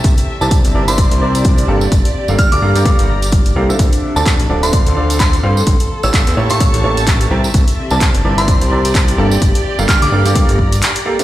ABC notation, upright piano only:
X:1
M:4/4
L:1/16
Q:"Swing 16ths" 1/4=128
K:Gdor
V:1 name="Upright piano"
z3 [C,CEBd]2 z [C,CEBd] [C,CEBe] [C,CEBd]2 [C,CEBd]4 [G,,B,GAa] z | z3 [G,,B,GAf]2 z [G,,B,GAf] [G,,B,GAg] [G,,B,GAf]2 z4 [B,GAf] [D,CFAe]- | [D,CFAe]3 [D,CFAd]2 z [D,CFAd] [D,CFAe] [D,CFAd]2 [D,CFAd]4 [CFAf] z | z3 [A,,B,GA^c]2 z [A,,B,GAc] [A,,B,GAe] [A,,B,GAc]2 [A,,B,GAc]4 [=C,CEBg] z |
z3 [C,CEBd]2 z [C,CEBd] [C,CEBe] [C,CEBd]2 [C,CEBd]4 [G,,B,GAa] z | z3 [G,,B,GAf]2 z [G,,B,GAf] [G,,B,GAg] [G,,B,GAf]2 z4 [B,GAf] [D,CFAe] |]